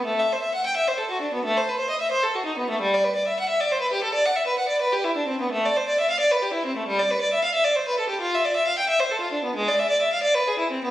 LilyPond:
\new Staff \with { instrumentName = "Violin" } { \time 12/8 \key e \minor \tempo 4. = 89 a16 e''16 c''16 e''16 fis''16 g''16 e''16 c''16 a'16 fis'16 d'16 b16 a16 c''16 b'16 c''16 dis''16 e''16 c''16 a'16 fis'16 dis'16 b16 a16 | g16 d''16 b'16 d''16 e''16 fis''16 e''16 d''16 c''16 b'16 g'16 a'16 d''16 fis''16 e''16 b'16 fis''16 d''16 b'16 g'16 e'16 d'16 c'16 b16 | \key e \phrygian a16 d''16 c''16 d''16 e''16 f''16 d''16 b'16 g'16 e'16 c'16 a16 g16 d''16 b'16 d''16 e''16 f''16 e''16 d''16 c''16 b'16 a'16 g'16 | f'16 e''16 d''16 e''16 f''16 g''16 e''16 c''16 a'16 f'16 d'16 b16 gis16 d''16 e''16 d''16 e''16 f''16 d''16 b'16 gis'16 e'16 c'16 b16 | }